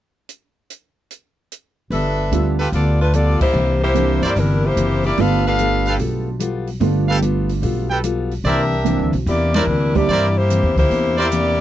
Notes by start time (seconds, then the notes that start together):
0.29 closed hi-hat
0.70 closed hi-hat
1.11 closed hi-hat
1.52 closed hi-hat
1.90 G1 G3 B3 D4 F4 A4 B4 E5, open hi-hat
2.31 D2 G3 A3 B3 D4 F4 A4, closed hi-hat
2.59 F4 G4 A4 B4, open hi-hat
2.72 D2 G3 B3 F4 A4 D5, open hi-hat
3.01 A3 D4 F4 B4
3.13 G3 B3 F4 A4 D5, closed hi-hat
3.41 A#3 E4 G4 C5, muted upright bass stroke, kick, crash
3.54 C2 C3 E3 A#3 D4
3.82 A#3 E4 G4 C5
3.94 C3 E3 G3 A#3 C4 D4 E4, closed hi-hat
4.22 G2 A#3 E4 G4 A#4 C5 D5, open hi-hat
4.35 G1 C3 E3 G3 A#3 D4 E4 A#4, open hi-hat
4.66 A#3 E4 G4 C5
4.76 F#1 C3 E3 A#3 D4, closed hi-hat
5.04 A#3 E4 G4 D5, open hi-hat
5.17 G1 G3 A3 B3 D4 F4 A4 B4 F5, open hi-hat
5.46 D4 A4 B4 F5
5.59 G3 B3 F4 A4, closed hi-hat
5.86 G4 A4 B4 F5, open hi-hat
5.98 B1 G3 B3 F4 A4, open hi-hat
6.40 G3 B3 F4 A4, closed hi-hat
6.67 open hi-hat
6.80 G1 G3 A3 B3 D4 F4 A4, open hi-hat
7.08 G4 A4 B4 F5
7.22 G3 B3 F4 A4, closed hi-hat
7.49 open hi-hat
7.61 B1 G3 B3 F4 A4, open hi-hat
7.90 G4 A4 B4 G5
8.03 G3 B3 F4 A4, closed hi-hat
8.31 open hi-hat
8.44 C2 C3 E3 A#3 D4 E4 G4 A#4 C5 D5 E5, open hi-hat
8.85 C3 E3 G3 A#3 C4 D4 E4, closed hi-hat
8.99 D2
9.13 B1, open hi-hat
9.26 E2 C3 E3 A#3 D4 E4 G4 D5, open hi-hat
9.54 G3 D4 E4 A#4 C5 D5, snare, ride
9.67 D2 C3 E3 A#3 D4
9.95 G3 A#3 C4 D4 E4 G4 D5, kick, open hi-hat
10.08 G2 C3 E3 A#3 D4 E4 A#4 C5 D5, open hi-hat
10.36 A#3 E4 G4 C5
10.49 C3 E3 A#3 D4, closed hi-hat
10.63 E2
10.76 D2 A#3 E4 G4 C5, kick, open hi-hat
10.90 E2 C3 E3 A#3 D4, open hi-hat
11.17 A#3 E4 G4 A#4 C5 D5
11.31 C3 E3 A#3 D4, closed hi-hat